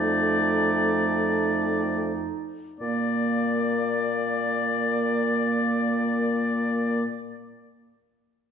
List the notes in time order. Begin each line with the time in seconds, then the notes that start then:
Already playing: F2 A3 D#4 D5
2.80 A#2 A#3 D5